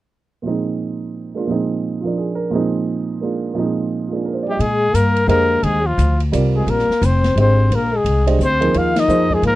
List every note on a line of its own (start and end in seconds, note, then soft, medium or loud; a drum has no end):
0.42 1.45 A#2 soft
0.42 1.46 F3 soft
0.42 1.33 G#3 soft
0.42 1.48 C4 soft
0.47 1.49 D#4 soft
1.34 1.47 G#3 soft
1.34 1.49 A#3 soft
1.34 1.49 D4 soft
1.34 1.49 F4 soft
1.46 2.48 A#2 soft
1.46 2.02 F3 soft
1.46 2.51 G#3 soft
1.46 2.52 C4 soft
1.51 2.54 D#4 medium
2.01 2.50 F3 soft
2.01 2.25 F4 soft
2.05 2.53 A#3 soft
2.05 2.54 D4 soft
2.18 2.44 G#4 soft
2.35 2.59 A#4 medium
2.50 3.52 A#2 medium
2.50 3.53 F3 medium
2.50 3.19 G#3 medium
2.50 3.56 C4 medium
2.55 3.57 D#4 medium
3.20 3.55 G#3 soft
3.20 3.56 A#3 soft
3.20 3.57 D4 soft
3.20 3.57 F4 soft
3.54 4.59 A#2 medium
3.54 4.59 F3 soft
3.54 4.09 G#3 soft
3.54 4.61 C4 soft
3.59 4.61 D#4 medium
4.08 4.59 G#3 soft
4.08 4.60 A#3 soft
4.08 4.12 F4 soft
4.13 4.60 D4 soft
4.13 4.61 F4 soft
4.13 4.28 G#4 soft
4.25 4.40 A#4 soft
4.34 4.48 C5 soft
4.43 4.54 D5 medium
4.47 4.61 G3 medium
4.47 4.62 G4 medium
4.47 4.63 D#5 medium
4.59 4.93 A#2 medium
4.59 4.94 G#3 medium
4.59 4.96 G#4 medium
4.59 ride soft
4.93 5.27 G2 medium
4.93 5.27 A#3 medium
4.93 5.28 A#4 medium
4.93 hi-hat pedal medium
4.93 ride medium
5.16 ride soft
5.27 5.62 F2 medium
5.27 5.80 D3 medium
5.27 5.80 G#3 medium
5.27 5.64 A#3 medium
5.27 5.80 G4 medium
5.27 5.65 A#4 medium
5.27 5.81 C5 medium
5.27 5.81 D#5 medium
5.27 ride medium
5.63 5.97 D#2 medium
5.63 5.86 G#3 medium
5.63 5.88 G#4 medium
5.63 ride soft
5.85 6.20 F3 medium
5.85 6.20 F4 medium
5.98 6.31 D2 medium
5.98 hi-hat pedal medium
5.98 ride soft
6.20 ride soft
6.32 6.66 C2 medium
6.32 6.84 G3 medium
6.32 6.84 C4 medium
6.32 6.84 F4 medium
6.32 6.84 A#4 medium
6.32 6.85 D5 medium
6.32 hi-hat pedal soft
6.32 ride medium
6.56 6.70 G#3 medium
6.56 6.72 G#4 medium
6.67 6.87 A#1 medium
6.67 7.05 A#3 medium
6.67 7.07 A#4 medium
6.67 ride soft
6.79 snare soft
6.89 muted upright bass stroke soft
6.89 snare soft
7.02 7.35 F1 medium
7.02 7.37 C4 medium
7.02 7.38 C5 medium
7.02 hi-hat pedal medium
7.02 ride medium
7.24 snare soft
7.24 ride soft
7.36 7.69 G#1 medium
7.36 7.88 D3 soft
7.36 7.88 G#3 soft
7.36 7.74 C4 medium
7.36 7.88 G4 soft
7.36 7.88 C5 soft
7.36 7.89 D#5 soft
7.36 ride soft
7.40 7.77 C5 medium
7.71 8.04 A#1 medium
7.71 7.96 A#3 medium
7.71 ride medium
7.75 7.98 A#4 medium
7.95 8.28 G#3 medium
7.95 8.29 G#4 medium
8.04 8.38 C2 medium
8.04 ride medium
8.26 8.38 G#3 medium
8.26 8.38 D4 medium
8.26 8.38 G4 medium
8.26 8.39 C5 medium
8.26 8.39 D#5 medium
8.26 ride medium
8.39 8.73 D2 medium
8.39 8.77 C4 medium
8.39 hi-hat pedal medium
8.44 8.79 C5 loud
8.61 9.06 F3 medium
8.61 9.06 A#3 medium
8.61 9.06 D#4 medium
8.61 9.06 G#4 medium
8.61 9.06 A#4 medium
8.61 ride soft
8.74 9.08 D#2 medium
8.74 8.99 F4 medium
8.74 9.01 F5 medium
8.74 ride medium
8.96 9.33 D#4 medium
8.96 9.36 D#5 medium
8.96 snare medium
8.96 ride medium
9.08 9.42 F2 medium
9.08 9.55 F3 medium
9.08 9.55 A#3 medium
9.08 9.55 D#4 medium
9.08 9.55 G#4 medium
9.08 9.55 C5 medium
9.08 hi-hat pedal medium
9.30 9.44 G#3 medium
9.30 9.45 G#4 medium
9.30 kick soft
9.42 9.54 G#2 medium
9.42 9.54 A#3 medium
9.42 ride medium
9.47 9.55 A#4 medium